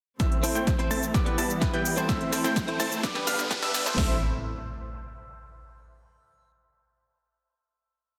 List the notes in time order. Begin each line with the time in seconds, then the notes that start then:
0.20 A1 E3 A3 C4 E4 C5 E5 E6, kick, snare, closed hi-hat, riser, shaker
0.32 closed hi-hat
0.43 C4 E4 A4 C5, open hi-hat, shaker
0.55 A2 A3 C4 E4 C5 G5 G6, closed hi-hat, shaker
0.67 kick, snare, closed hi-hat, shaker
0.79 C4 E4 A4 C5, closed hi-hat
0.91 A2 A3 C4 E4 C5 A5 A6, open hi-hat, shaker
1.03 closed hi-hat, shaker
1.14 G3 B3 E4 B4 D5 D6, kick, snare, closed hi-hat, shaker
1.26 B3 E4 G4 B4, closed hi-hat
1.38 G3 B3 E4 B4 A5 A6, open hi-hat, shaker
1.50 closed hi-hat, shaker
1.61 B3 E4 G4 B4, kick, snare, closed hi-hat, shaker
1.73 G3 B3 E4 B4 G5 G6, closed hi-hat
1.85 open hi-hat, shaker
1.96 C4 E4 A4 C5, closed hi-hat, shaker
2.09 A3 C4 E4 C5 E5 E6, kick, snare, closed hi-hat, shaker
2.21 closed hi-hat
2.32 C4 E4 A4 C5, snare, open hi-hat, shaker
2.44 A2 A3 C4 E4 C5 G5 G6, closed hi-hat, shaker
2.56 kick, snare, closed hi-hat, shaker
2.67 C4 E4 A4 C5, closed hi-hat
2.80 A2 A3 C4 E4 C5 A5 A6, snare, open hi-hat, shaker
2.92 closed hi-hat, shaker
3.03 D3 G3 B3 D4 B4 D5 D6, kick, snare, closed hi-hat, shaker
3.14 B3 D4 G4 B4, snare, closed hi-hat
3.27 G3 B3 D4 B4 F5 F6, snare, open hi-hat, shaker
3.39 snare, closed hi-hat, shaker
3.50 B3 D4 G4 B4, kick, snare, closed hi-hat, shaker
3.62 G2 G3 B3 D4 B4 E5 E6, snare, closed hi-hat
3.74 snare, open hi-hat, shaker
3.86 C4 E4 A4 C5, snare, closed hi-hat, shaker
3.96 A1 A2 A3 C4 E4 C5 E5 E6, kick, snare, open hi-hat, impact